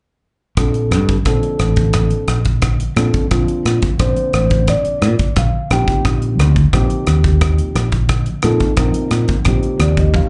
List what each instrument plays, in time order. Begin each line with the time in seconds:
0.57 fingered electric bass A#1, tine electric piano F3 A#3 C4 D4 A4, kick, cross-stick, closed hi-hat
0.74 closed hi-hat
0.91 fingered electric bass G2, cross-stick, closed hi-hat
1.09 kick, closed hi-hat
1.25 fingered electric bass A#1, tine electric piano F3 A#3 C4 D4 A4, kick, cross-stick, closed hi-hat
1.43 closed hi-hat
1.59 fingered electric bass A1, cross-stick, closed hi-hat
1.76 kick, closed hi-hat
1.93 kick, cross-stick, closed hi-hat
2.10 closed hi-hat
2.28 fingered electric bass A#1, cross-stick, closed hi-hat
2.45 kick, closed hi-hat
2.62 kick, cross-stick, closed hi-hat
2.80 closed hi-hat
2.96 fingered electric bass A#2, tine electric piano F3 A#3 C4 D4 A4, cross-stick, closed hi-hat
3.14 kick, closed hi-hat
3.31 fingered electric bass A#1, tine electric piano F3 A#3 C4 D4 F4, kick, cross-stick, closed hi-hat
3.48 closed hi-hat
3.65 fingered electric bass A#2, cross-stick, closed hi-hat
3.82 kick, closed hi-hat
3.99 fingered electric bass A#1, tine electric piano F3 A#3 C4 D4 C5, kick, cross-stick, closed hi-hat
4.16 closed hi-hat
4.33 fingered electric bass A1, tine electric piano C5, cross-stick, closed hi-hat
4.50 kick, closed hi-hat
4.68 tine electric piano D5, kick, cross-stick, closed hi-hat
4.85 muted fingered electric bass stroke, closed hi-hat
5.02 fingered electric bass A#2, cross-stick, closed hi-hat
5.19 muted fingered electric bass stroke, kick, closed hi-hat
5.36 fingered electric bass A#1, tine electric piano F5, kick, cross-stick, closed hi-hat
5.71 fingered electric bass A#1, tine electric piano F3 A#3 C4 D#4 G4 G5, cross-stick, closed hi-hat
5.88 kick, closed hi-hat
6.05 fingered electric bass A#1, kick, cross-stick, closed hi-hat
6.22 closed hi-hat
6.39 fingered electric bass D2, cross-stick, closed hi-hat
6.56 kick, closed hi-hat
6.73 fingered electric bass A#1, tine electric piano F3 A#3 C4 D#4 G4, kick, cross-stick, closed hi-hat
6.90 closed hi-hat
7.07 fingered electric bass D#2, cross-stick, closed hi-hat
7.24 kick, closed hi-hat
7.41 kick, cross-stick, closed hi-hat
7.58 closed hi-hat
7.75 fingered electric bass A#1, cross-stick, closed hi-hat
7.92 kick, closed hi-hat
8.09 kick, cross-stick, closed hi-hat
8.26 closed hi-hat
8.42 fingered electric bass A#2, tine electric piano F3 A#3 C4 D#4 A4, cross-stick, closed hi-hat
8.60 kick, closed hi-hat
8.77 fingered electric bass A#1, tine electric piano F3 A#3 C4 D#4 A#4, kick, cross-stick, closed hi-hat
8.94 closed hi-hat
9.11 fingered electric bass A#2, cross-stick, closed hi-hat
9.28 kick, closed hi-hat
9.45 fingered electric bass A#1, tine electric piano F3 A#3 C4 D#4 G4, kick, cross-stick, closed hi-hat
9.63 closed hi-hat
9.79 fingered electric bass D#2, tine electric piano D5, cross-stick, closed hi-hat
9.97 tine electric piano D#5, kick, closed hi-hat
10.14 tine electric piano F5, kick, high tom